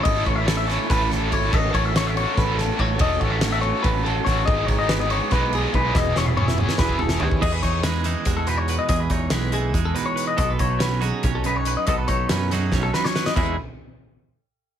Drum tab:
CC |--------------|x-------------|--------------|--------------|
RD |x-x-x-x-x-x-x-|--x-x-x-x-x-x-|x-x-x-x-x-x-x-|x-x-x-x-x-x-x-|
HH |--------------|--------------|--------------|--------------|
SD |----o-o-o-o---|----o---o-o---|----o-------o-|----o---o-----|
T1 |--------------|--------------|--------------|--------------|
T2 |--------------|--------------|--------------|--------------|
FT |--------------|--------------|--------------|--------------|
BD |o-o-----o---o-|o-o-----o---o-|o-o-----o---o-|o-o-----o---o-|

CC |--------------|x-------------|--------------|--------------|
RD |--------------|--------------|--------------|--------------|
HH |--------------|--x-x-x-x-x-x-|x-x-x-x-x-x-x-|x-x-x-x-x-x-x-|
SD |o-o--o-oo--o--|--o-o---o-----|----o---------|----o---------|
T1 |-o-o----------|--------------|--------------|--------------|
T2 |----o-o-------|--------------|--------------|--------------|
FT |----------o-o-|--------------|--------------|--------------|
BD |o-------oo---o|o-o-----o-----|o-o-----o-----|o-o-----o-----|

CC |--------------|x-------------|
RD |--------------|--------------|
HH |x-x-x-x-------|--------------|
SD |----o-o-o-oooo|--------------|
T1 |--------------|--------------|
T2 |--------------|--------------|
FT |--------------|--------------|
BD |o-o-----o-----|o-------------|